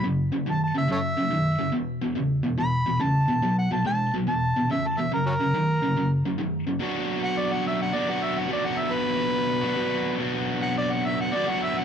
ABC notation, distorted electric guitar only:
X:1
M:4/4
L:1/8
Q:"Swing" 1/4=142
K:Bm
V:1 name="Distorted electric guitar" clef=bass
[F,,C,] [F,,C,] [F,,^D,] [F,,C,] [F,,C,] [F,,C,] [F,,D,] [F,,C,] | [E,,B,,] [E,,B,,] [E,,C,] [E,,B,,] [E,,B,,] [E,,B,,] [E,,C,] [E,,B,,] | [B,,F,] [B,,F,] [B,,^G,] [B,,F,] [E,,B,,] [E,,B,,] [E,,C,] [E,,B,,] | [F,,C,] [F,,C,] [F,,^D,] [F,,C,] [F,,C,] [F,,C,] [F,,D,] [F,,C,] |
[B,,F,B,DF]4- [B,,F,B,DF] [B,,F,B,DF] [B,,F,B,DF]2 | [B,,F,B,DF]4- [B,,F,B,DF] [B,,F,B,DF] [B,,F,B,DF]2 | [B,,F,B,DF]4- [B,,F,B,DF] [B,,F,B,DF] [B,,F,B,DF]2 |]